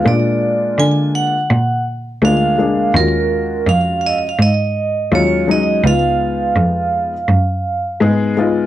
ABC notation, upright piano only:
X:1
M:4/4
L:1/8
Q:"Swing 16ths" 1/4=83
K:A#phr
V:1 name="Upright piano"
[G,A,=DE]3 z3 [G,A,DE] [G,A,DG] | [G,CEF]3 z3 [F,G,CE] [F,G,CD] | [G,B,DE]3 z3 [G,B,DG] [G,B,DE] |]